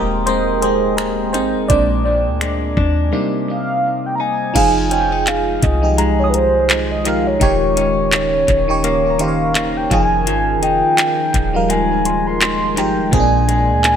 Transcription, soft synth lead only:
3.50 F5
4.06 G5
4.15 A#5
4.21 G#5
4.92 G5
5.28 F5
5.63 D#5
6.20 C#5
6.30 B4
6.35 C5
6.91 D#5
7.07 F5
7.27 C#5
9.21 F5
9.77 G5
9.92 G#5
10.63 G5
11.56 F5
11.70 G#5
12.27 C6
12.78 G5
13.14 G#5

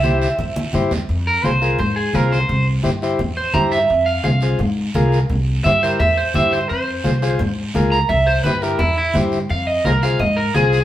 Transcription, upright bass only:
Already playing: C2
0.39 E2
0.74 G2
1.09 F2
1.44 C2
1.79 G#2
2.14 C2
2.49 C2
2.85 G2
3.19 E2
3.54 G2
3.90 F2
4.25 C2
4.60 G#2
4.95 C2
5.29 C2
5.65 G2
6.00 E2
6.35 G2
6.70 F2
7.05 C2
7.41 G#2
7.75 C#2
8.10 C2
8.45 G2
8.79 E2
9.15 G2
9.50 F2
9.86 C2
10.20 G#2
10.55 C2

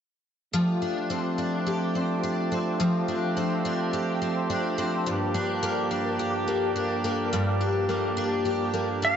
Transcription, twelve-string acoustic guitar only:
0.53 F3
0.82 D4
1.10 C4
1.38 D4
1.67 G4
1.95 C4
2.23 D4
2.52 C4
2.80 F3
3.08 D4
3.37 C4
3.65 D4
3.93 G4
4.22 C4
4.50 D4
4.78 C4
5.06 G2
5.34 D4
5.63 A#3
5.91 D4
6.19 G4
6.48 A#3
6.76 D4
7.04 A#3
7.33 G2
7.61 D4
7.89 A#3
8.17 D4
8.45 G4
8.74 A#3
9.02 D4

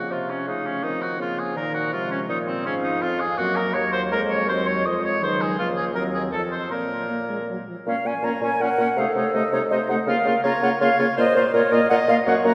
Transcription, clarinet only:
Already playing: A#3
0.47 A3
0.83 C4
1.20 A#3
1.93 G#3
2.30 A#3
2.67 C#4
3.03 C4
3.39 A#3
4.48 C4
4.85 G#3
5.22 F#3
5.59 A#3
5.96 C4
6.33 C4
6.71 A#3
8.24 C#5
8.61 A#4
8.98 A4
9.72 C5
10.07 A#4
10.44 C#5
10.81 C#5
11.17 C5
11.54 A#4
11.90 D#5
12.27 C#5

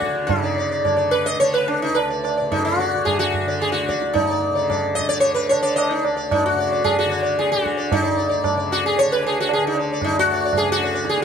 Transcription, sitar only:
Already playing: F#4
0.02 D5
0.27 D#4
0.44 D5
0.58 D5
0.71 D5
0.85 D5
0.97 D5
1.11 B4
1.26 D#5
1.40 C#5
1.54 B4
1.68 D4
1.82 D#4
1.95 B4
2.10 D5
2.24 D5
2.38 D5
2.52 D#4
2.65 F#4
2.80 D5
3.05 G#4
3.19 F#4
3.48 D5
3.62 G#4
3.72 F#4
3.89 D5
4.13 D#4
4.30 D5
4.55 D5
4.70 D5
4.95 D#5
5.09 D5
5.20 C#5
5.34 B4
5.49 C#5
5.62 D5
5.76 D#5
5.91 D#4
6.04 D5
6.17 D5
6.32 D#4
6.46 F#4
6.59 D5
6.72 D5
6.84 G#4
6.99 F#4
7.10 D5
7.23 D5
7.39 G#4
7.52 F#4
7.77 D5
7.92 D#4
8.03 D5
8.17 D5
8.29 D5
8.44 D5
8.57 D5
8.72 F#4
8.86 G#4
8.99 C#5
9.12 B4
9.27 G#4
9.40 F#4
9.53 G#4
9.67 D#4
9.79 D5
9.93 D5
10.04 D#4
10.19 F#4
10.32 D5
10.45 D5
10.57 G#4
10.72 F#4
10.83 D5
10.95 D5
11.09 G#4

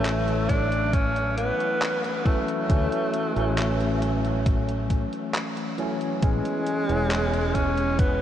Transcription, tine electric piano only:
Already playing: E3 F#3 A3 C#4 C#5
2.25 E3 F#3 A3 C#4
2.69 E3 F#3 A3 C#4
3.35 E3 F#3 A3 C#4
5.78 E3 F#3 A3 C#4
6.22 E3 G#3 B3 C#4
6.88 E3 G#3 B3 C#4

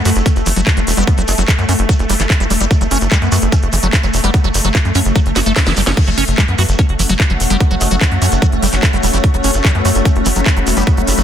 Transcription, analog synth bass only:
0.05 F#2
0.16 F#1
0.36 F#1
0.46 F#1
0.56 F#1
0.77 F#1
0.87 E1
0.97 F#1
1.18 F#1
1.28 F#1
1.38 F#1
1.58 F#2
1.69 F#2
1.79 F#1
1.99 F#1
2.09 F#1
2.20 F#1
2.40 F#1
2.50 E1
2.60 F#1
2.81 F#1
2.91 F#1
3.01 F#1
3.22 F#2
3.32 F#2
3.42 F#1
3.63 F#1
3.73 F#1
3.83 F#1
4.03 F#1
4.14 E1
4.24 F#1
4.44 F#1
4.54 F#1
4.65 F#1
4.85 F#2
4.95 F#2
5.05 F#1
5.26 F#1
5.36 F#1
5.46 F#1
5.67 F#1
5.77 F#1
5.87 F#1
6.07 F#1
6.18 F#1
6.28 F#1
6.48 F#2
6.58 F#2
6.69 F#1
6.89 F#1
6.99 F#1
7.09 F#1
7.30 F#1
7.40 E1
7.50 F#1
7.71 F#1
7.81 F#1
7.91 F#1
8.11 F#2
8.22 F#2
8.32 F#1
8.52 F#1
8.63 F#1
8.73 F#1
8.93 F#1
9.03 E1
9.14 F#1
9.34 F#1
9.44 F#1
9.54 F#1
9.75 F#2
9.85 F#2
9.95 F#1
10.16 F#1
10.26 F#1
10.36 F#1
10.56 F#1
10.67 E1
10.77 F#1
10.97 F#1
11.07 F#1
11.18 F#1

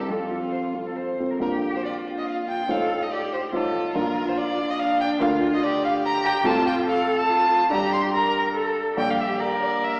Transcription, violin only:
0.00 G4
0.10 F4
1.42 A#4
1.75 C5
1.85 D5
2.18 D#5
2.28 F5
2.48 G5
2.70 F5
3.03 D#5
3.12 D5
3.33 C5
3.53 A4
3.96 A#4
4.28 C5
4.37 D5
4.70 D#5
4.79 F5
5.01 G5
5.21 F5
5.54 D#5
5.63 D5
5.84 F5
6.06 A#5
6.26 G5
6.46 A5
6.67 G5
6.88 F5
7.19 A5
7.71 A#5
7.93 C6
8.14 A#5
8.98 G5
9.10 F5
9.20 E5
9.40 D5
9.61 D5
9.84 E5

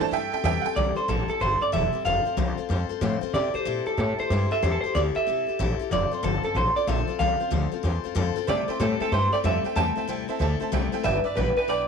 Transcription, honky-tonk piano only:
0.00 E3 A3 D4 C5 A5
0.13 E5 G5
0.33 E5 G5
0.45 E5 G5
0.61 F#5
0.66 G5
8.47 C5 E5 G5
8.68 C5 E5 G5
8.80 C5 E5 G5
9.00 C5 E5 G5
9.12 C5 E5 G5
9.32 C5 E5 G5
9.44 C5 E5 G5
9.64 C5 E5 G5
9.76 C5 E5 G5
9.97 C5 E5 G5
10.08 C5 E5 G5
10.29 C5 E5 A5
10.40 C5 E5 A5
10.60 C5 E5 A5
10.72 C5 E5 G5
10.92 C5 E5 G5
11.04 B4 D5 G5
11.24 B4 D5 E5
11.35 B4 D5 G5
11.57 B4 D5 G5
11.68 B4 D5 G5

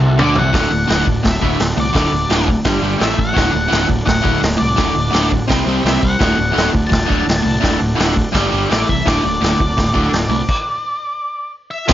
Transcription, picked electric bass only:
Already playing: C2
0.20 D2
0.37 C2
0.54 D1
0.72 D1
0.90 D1
1.07 D1
1.25 D1
1.43 D1
1.60 D1
1.77 C2
1.95 D1
2.12 D1
2.30 D1
2.65 G1
2.82 G1
3.01 A1
3.18 A1
3.37 D1
3.54 D1
3.72 D1
3.89 D1
4.08 D1
4.25 D1
4.42 D1
4.62 C2
4.78 D1
4.96 D1
5.13 D1
5.50 C2
5.66 C2
5.84 C2
6.03 C2
6.21 D1
6.39 D1
6.56 D1
6.75 D1
6.93 D1
7.10 D1
7.28 D1
7.45 C2
7.64 D1
7.82 D1
7.98 D1
8.34 G1
8.53 G1
8.72 A1
8.90 C2
9.07 D1
9.25 D1
9.42 D1
9.61 D1
9.78 D1
9.96 D1
10.12 D1
10.29 C2
11.89 F1

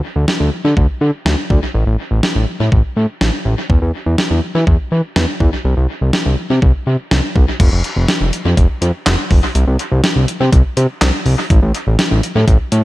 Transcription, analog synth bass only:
0.16 D2
0.40 D2
0.65 D3
0.77 D2
1.01 D3
1.25 D2
1.50 D2
1.74 A1
1.86 A1
2.11 A1
2.36 A1
2.60 A2
2.72 A1
2.97 A2
3.21 A1
3.45 A1
3.70 E2
3.82 E2
4.06 E2
4.31 E2
4.55 E3
4.67 E2
4.92 E3
5.16 E2
5.40 E2
5.65 C2
5.77 C2
6.01 C2
6.26 C2
6.50 C3
6.62 C2
6.87 C3
7.11 C2
7.36 C2
7.60 F1
7.72 F1
7.96 F1
8.21 F1
8.45 F2
8.57 F1
8.82 F2
9.06 F1
9.31 F1
9.55 C2
9.67 C2
9.92 C2
10.16 C2
10.40 C3
10.52 C2
10.77 C3
11.01 C2
11.26 C2
11.50 A1
11.62 A1
11.87 A1
12.11 A1
12.35 A2
12.48 A1
12.72 A2

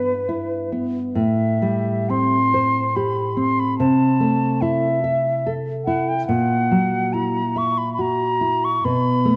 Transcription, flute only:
Already playing: B4
1.15 E5
2.10 C6
2.96 B5
3.38 C6
3.60 B5
3.79 A5
4.61 E5
5.85 F#5
6.09 G5
6.27 F#5
7.13 A#5
7.58 C#6
7.78 B5
7.94 B5
8.01 A#5
8.65 C#6
8.85 B5

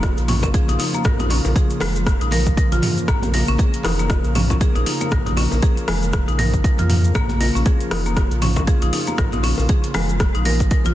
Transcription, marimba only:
0.29 C#4
0.44 C#4
0.54 G#4
0.69 D#4
0.80 D#4
0.94 A#3
1.05 A#4
1.20 D#4
1.31 C#4
1.56 G#4
1.81 G#3
2.22 D#4
2.32 A#4
2.58 A#4
2.72 F4
3.08 A#3
3.34 A#4
3.48 C#4
3.59 G#4
3.85 D#4
3.99 A#3
4.35 C#4
4.50 C#4
4.61 G#4
4.76 D#4
4.86 D#4
5.01 A#3
5.12 A#4
5.26 D#4
5.37 C#4
5.63 G#4
5.88 G#3
6.28 D#4
6.39 A#4
6.64 A#4
6.79 F4
7.15 A#3
7.41 A#4
7.55 C#4
7.66 G#4
7.91 D#4
8.06 A#3
8.42 C#4
8.57 C#4
8.67 G#4
8.82 D#4
8.93 D#4
9.08 A#3
9.18 A#4
9.33 D#4
9.44 C#4
9.69 G#4
9.95 G#3
10.35 D#4
10.46 A#4
10.71 A#4
10.86 F4

